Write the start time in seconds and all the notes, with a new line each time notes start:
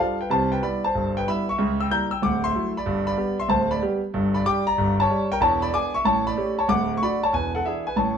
0.00 G3 D4 F4 A4 F5
0.21 B4 G5
0.30 C2 C3 C5 A5
0.52 B4 G5
0.62 G3 B3 E4 D5 B5
0.84 C5 A5
0.95 G1 G2
1.17 B4 G5
1.27 G3 B3 E4 E5 B5
1.49 E5 C#6
1.58 C#2 C#3
1.80 G5 E6
1.91 G3 A#3 E4 A#5 G6
2.11 G5 E6
2.22 D1 D2 F#5 D6
2.44 E5 C6
2.55 F#3 A3 E4
2.77 D5 B5
2.86 G1 G2
3.07 D5 B5
3.17 G3 B3 G4
3.40 E5 C6
3.48 D1 D2 C5 A5
3.71 D5 B5
3.81 G3 B3 G4
4.14 G1 G2
4.34 D5 B5
4.45 G3 D4 G4 G5 D6
4.67 D5 A#5
4.78 G1 G2
5.00 C#5 A5
5.10 G3 D4 G4
5.32 A#4 G5
5.40 E1 E2 C#5 A5
5.62 D5 B5
5.73 B3 D4 G#4 G#5 D6
5.94 E5 C#6
6.05 A1 A2 C#5 A5
6.27 D5 B5
6.37 A3 C#4 G4
6.59 C#5 A5
6.68 D1 D2 F#5 D6
6.97 C#6
7.02 A3 D4 F#4 D5 B5
7.23 C#5 A5
7.33 E1 E2 B4 G#5
7.55 A4 F#5
7.65 E3 D4 E4 G#4 E5
7.87 B4 G#5
7.96 A1 A2 C#5 A5